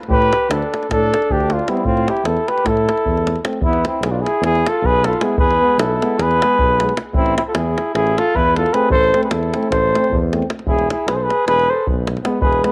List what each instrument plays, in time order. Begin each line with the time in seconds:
0.03 davul high
0.09 tuba A2, flugelhorn G4, cornet B4, davul low
0.22 davul high
0.33 davul high
0.49 tuba D2, flugelhorn D4, cornet A4, davul high
0.62 davul high
0.74 davul high
0.83 davul high
0.89 tuba A2, flugelhorn D4, cornet A4, davul high, davul low
1.14 davul high
1.22 davul high
1.30 tuba D2, flugelhorn D4, cornet G4, davul low
1.40 davul high
1.50 flugelhorn D4, cornet F4, davul high
1.59 davul high
1.67 euphonium G3, trombone B3, flugelhorn C4, cornet E4, davul high
1.77 davul high
1.84 tuba A2, flugelhorn C4, cornet F4, davul low
1.97 davul high
2.08 flugelhorn E4, cornet G4, davul high
2.17 davul high
2.24 tuba E2, flugelhorn E4, cornet A4, davul high
2.37 davul high
2.48 flugelhorn G4, cornet B4, davul high
2.58 davul high
2.65 tuba A2, flugelhorn E4, cornet A4, davul high, davul low
2.77 davul high
2.89 davul high
2.98 davul high
3.05 tuba E2, davul low
3.17 davul high
3.27 davul high
3.36 davul high
3.44 euphonium A3, trombone C4, davul high
3.53 davul high
3.60 tuba E2, flugelhorn B3, cornet E4, davul low
3.73 davul high
3.85 flugelhorn C4, cornet E4, davul high
4.01 tuba B1, flugelhorn E4, cornet G#4, davul high
4.10 flugelhorn D4, cornet F4
4.21 flugelhorn E4, cornet G#4
4.26 davul high
4.41 tuba E2, flugelhorn E4, davul high
4.45 cornet G#4
4.55 davul high
4.66 flugelhorn F4, cornet A4, davul high
4.82 tuba B1, cornet B4, davul low
4.86 flugelhorn G#4
5.04 flugelhorn F4, cornet A4, davul high
5.13 davul high
5.21 euphonium G#3, trombone B3, flugelhorn E4, cornet G#4, davul high
5.37 tuba E2, flugelhorn G#4, cornet B4, davul low
5.51 davul high
5.61 euphonium G#3, trombone B3
5.78 tuba B1, flugelhorn E4, cornet A4, davul high
6.01 euphonium G#3, trombone B3, davul high
6.18 tuba E2, flugelhorn G#4, cornet B4, davul high
6.31 davul high
6.42 euphonium G#3, trombone B3, davul high
6.59 tuba B1, davul low
6.80 euphonium G#3, trombone B3, davul high
6.89 davul high
6.97 davul high
7.14 tuba A1, flugelhorn C4, cornet E4, davul low
7.26 davul high
7.37 flugelhorn C4, cornet E4, davul high
7.48 flugelhorn F4, cornet A4
7.54 tuba E2, flugelhorn E4, cornet G#4, davul high
7.78 davul high
7.94 tuba A1, flugelhorn E4, cornet G#4, davul high
8.07 davul high
8.18 flugelhorn F4, cornet A4, davul high
8.35 tuba E2, flugelhorn E4, cornet B4, davul low
8.56 flugelhorn F4, cornet A4, davul high
8.66 davul high
8.72 euphonium A3, trombone C4, flugelhorn G#4, cornet B4, davul high
8.89 tuba A1, flugelhorn A4, cornet C5, davul low
9.03 davul high
9.13 euphonium A3, trombone C4, davul high
9.23 flugelhorn G#4, cornet B4, davul high
9.31 tuba E2, flugelhorn E4, cornet A4, davul high
9.43 davul high
9.54 euphonium A3, trombone C4, davul high
9.63 davul high
9.71 tuba A1, flugelhorn A4, cornet C5, davul high, davul low
9.95 euphonium A3, trombone C4, davul high
10.04 davul high
10.11 tuba E2, davul low
10.31 euphonium A3, trombone C4, davul high
10.42 davul high
10.50 davul high
10.59 davul high
10.65 tuba E1, flugelhorn E4, davul low
10.69 cornet G#4
10.79 davul high
10.90 flugelhorn E4, cornet G#4, davul high
11.06 tuba B1, flugelhorn G#4, cornet B4, davul high
11.14 flugelhorn A4, cornet C5
11.23 flugelhorn G#4, cornet B4
11.30 davul high
11.46 tuba E1, flugelhorn G#4, cornet B4, davul high
11.59 davul high
11.70 flugelhorn A4, cornet C5
11.87 tuba B1, davul low
12.07 davul high
12.17 davul high
12.24 euphonium G#3, trombone B3, davul high
12.40 tuba E1, flugelhorn G#4, cornet B4, davul low
12.53 davul high
12.62 euphonium G#3, trombone B3, flugelhorn G#4, cornet B4, davul high